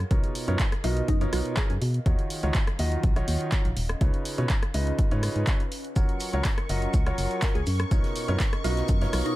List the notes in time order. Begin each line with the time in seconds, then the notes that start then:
Already playing: G#4 A#4 F5
0.11 B1 B2 D#4 F4 A#4 C#5, kick, closed hi-hat
0.24 closed hi-hat
0.35 open hi-hat
0.48 F#2 B2 D#4 F4 A#4 C#5 D#5, closed hi-hat
0.59 F5, kick, clap, closed hi-hat
0.72 cross-stick, closed hi-hat
0.84 B1 B2 D#4 F4 F#4 A#4 D#5, open hi-hat
0.97 closed hi-hat
1.08 F#2 D#4, kick, closed hi-hat
1.21 B2 D#4 F4 A#4 C#5, closed hi-hat
1.33 B1 F#4, cross-stick, open hi-hat
1.45 closed hi-hat
1.57 B2 D#4 F4 G#4 A#4, kick, clap, closed hi-hat
1.70 F#2 G#4, closed hi-hat
1.82 B2, open hi-hat
1.94 closed hi-hat
2.06 D#2 D#3 C#4 D#4 F4 F#4 C#5, kick, closed hi-hat
2.19 closed hi-hat
2.23 F#3
2.30 open hi-hat
2.43 C#2 D#3 D#4 F4 F#4 C#5, closed hi-hat
2.54 kick, clap, closed hi-hat
2.67 cross-stick, closed hi-hat
2.79 D#2 D#3 D#4 F4 F#4 D#5, open hi-hat
2.92 closed hi-hat
3.03 A#1, kick, closed hi-hat
3.16 D#3 D#4 F4 F#4 C#5, cross-stick, closed hi-hat
3.28 D#2, open hi-hat
3.41 closed hi-hat
3.52 D#3 D#4 F4 F#4 C#5, kick, clap, closed hi-hat
3.65 A#1, closed hi-hat
3.77 D#1, open hi-hat
3.89 cross-stick, closed hi-hat
4.01 C#2 C#3 D#4 F4 B4 C#5, kick, closed hi-hat
4.14 closed hi-hat
4.25 open hi-hat
4.38 B2 C#3 D#4 F4 B4 C#5, closed hi-hat
4.49 B4, kick, clap, closed hi-hat
4.63 cross-stick, closed hi-hat
4.74 C#2 C#3 D#4 F4 B4 D#5, open hi-hat
4.87 closed hi-hat
4.99 kick, closed hi-hat
5.11 G#2 C#3 D#4 F4 B4 C#5, closed hi-hat
5.23 cross-stick, open hi-hat
5.36 G#2, closed hi-hat
5.47 C#3 D#4 F4 B4 C#5, kick, clap, closed hi-hat
5.60 closed hi-hat
5.72 open hi-hat
5.84 closed hi-hat
5.96 F#1 F#3 F4 F#4 A#4 C#5 C#6, kick, closed hi-hat, shaker
6.08 A#4, closed hi-hat
6.20 open hi-hat, shaker
6.33 C#2 F#3 F4 F#4 A#4 C#5, closed hi-hat
6.45 kick, snare, clap, closed hi-hat, shaker
6.58 cross-stick, closed hi-hat
6.69 F#1 F#3 F4 F#4 A#4 D#5, open hi-hat, shaker
6.82 closed hi-hat
6.94 C#2, kick, closed hi-hat, shaker
7.06 F#3 F4 F#4 A#4 C#5, cross-stick, closed hi-hat
7.18 F#1, open hi-hat, shaker
7.31 closed hi-hat
7.42 F#3 F4 F#4 A#4 C#5, kick, snare, clap, closed hi-hat, shaker
7.55 C#2 G#4, closed hi-hat
7.66 F#2, open hi-hat, shaker
7.80 cross-stick, closed hi-hat
7.91 B1 B2 D#4 F4 A#4 C#5, kick, closed hi-hat, shaker
8.04 D#5, snare, closed hi-hat
8.16 open hi-hat, shaker
8.28 F#2 B2 D#4 F4 A#4 C#5 F5, closed hi-hat
8.40 kick, snare, clap, closed hi-hat, shaker
8.53 cross-stick, closed hi-hat
8.64 B1 B2 D#4 F4 F#4 A#4 D#5, open hi-hat, shaker
8.77 snare, closed hi-hat
8.88 F#2, kick, closed hi-hat, shaker
9.01 B2 D#4 F4 A#4 C#5, snare, closed hi-hat
9.13 B1, cross-stick, open hi-hat
9.26 D#4, closed hi-hat